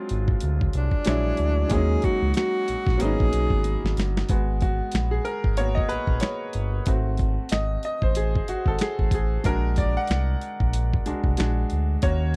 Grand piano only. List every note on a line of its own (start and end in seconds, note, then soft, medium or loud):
0.00 1.00 F#3 medium
0.00 1.02 G#3 medium
0.00 1.03 C4 medium
0.00 1.03 D4 medium
0.00 1.04 F4 medium
1.05 1.70 F#3 medium
1.05 1.68 G#3 medium
1.05 1.71 D4 medium
1.05 1.72 E4 medium
1.05 1.71 C#5 medium
1.67 1.76 E3 medium
1.67 2.96 G#3 medium
1.67 2.97 A#3 medium
1.74 2.96 F#3 medium
1.74 2.98 C#4 medium
1.74 2.99 D#4 medium
2.98 4.25 F#3 medium
2.98 4.26 A#3 medium
2.98 4.27 B3 medium
3.02 4.27 C#4 medium
3.02 4.29 D#4 medium
4.30 6.83 G#3 medium
4.30 5.58 B3 soft
4.30 4.61 F#4 medium
4.62 5.14 F#4 medium
5.11 5.25 G#4 medium
5.25 5.58 A#4 medium
5.57 5.87 A#3 soft
5.57 5.87 B3 soft
5.57 5.87 F#4 medium
5.57 5.77 C#5 loud
5.75 5.88 D#5 loud
5.89 6.22 B4 medium
6.21 6.82 C#5 medium
6.86 9.41 A3 soft
6.86 9.41 C4 soft
6.86 8.47 F#4 medium
7.52 7.81 D#5 medium
7.85 8.03 D#5 medium
8.03 8.16 C5 medium
8.16 8.49 G#4 medium
8.49 8.67 F#4 medium
8.68 8.80 A4 medium
8.81 9.13 G#4 medium
9.14 9.47 G#4 medium
9.44 10.37 G#3 medium
9.44 10.37 D4 medium
9.44 10.37 F#4 medium
9.44 9.75 A#4 medium
9.78 9.95 D5 medium
9.97 11.53 F#5 loud
11.06 11.35 G#3 soft
11.06 11.35 D4 soft
11.06 11.36 F#4 medium
11.38 11.99 G#3 medium
11.38 11.99 D4 medium
11.38 12.00 F#4 medium
12.03 12.36 A#3 medium
12.03 12.36 C#4 soft
12.03 12.36 F#4 medium
12.03 12.36 C#5 loud